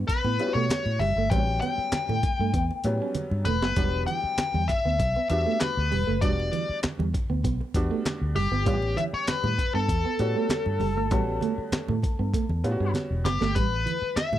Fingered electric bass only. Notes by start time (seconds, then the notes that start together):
0.09 muted fingered electric bass stroke
0.25 A2
0.55 B2
0.86 A2
1.00 F#1
1.16 G1
1.31 A1
1.78 muted fingered electric bass stroke
1.92 muted fingered electric bass stroke
2.09 A2
2.39 G2
2.54 E2
2.84 A2
3.31 G2
3.47 E1
3.62 F#1
3.77 E1
4.24 muted fingered electric bass stroke
4.38 muted fingered electric bass stroke
4.54 E2
4.85 D2
5.00 B1
5.30 E2
5.77 D2
5.92 E1
6.08 F#1
6.23 E1
6.69 muted fingered electric bass stroke
6.84 muted fingered electric bass stroke
6.99 E2
7.30 D2
7.44 B1
7.75 E2
8.22 D2
8.36 F#1
8.51 G1
8.67 A1
9.13 muted fingered electric bass stroke
9.28 muted fingered electric bass stroke
9.44 A2
9.74 G2
9.89 E2
10.20 A2
10.66 G2
10.80 F#1
10.97 G1
11.11 A1
11.58 muted fingered electric bass stroke
11.72 muted fingered electric bass stroke
11.89 A2
12.19 G2
12.49 E2
12.64 A2
12.80 G2
13.10 E1
13.25 F#1
13.41 G1
13.56 A1
14.02 muted fingered electric bass stroke
14.16 muted fingered electric bass stroke
14.33 A2